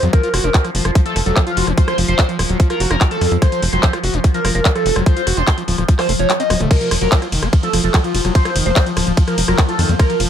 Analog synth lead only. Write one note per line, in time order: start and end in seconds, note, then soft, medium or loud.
0.13 0.32 A#4 loud
0.44 0.63 A#4 medium
1.06 1.18 A4 medium
1.26 1.39 A4 medium
1.47 1.65 F4 medium
1.78 1.96 C5 loud
2.08 2.27 C5 loud
2.70 2.83 A#4 medium
2.91 3.03 A#4 medium
3.11 3.30 A4 loud
3.42 3.61 C5 loud
3.73 3.91 C5 loud
4.34 4.47 A#4 medium
4.55 4.67 A#4 medium
4.76 4.94 A4 medium
5.06 5.25 C5 loud
5.37 5.56 C5 medium
5.99 6.11 C5 medium
6.19 6.32 C#5 medium
6.40 6.59 D#5 loud
6.71 6.89 A#4 loud
7.02 7.20 A#4 loud
7.63 7.76 A4 medium
7.84 7.96 A4 medium
8.04 8.23 F4 medium
8.35 8.54 C5 loud
8.66 8.85 C5 medium
9.28 9.40 A#4 medium
9.48 9.61 A#4 medium
9.69 9.87 A4 medium
9.99 10.18 A#4 loud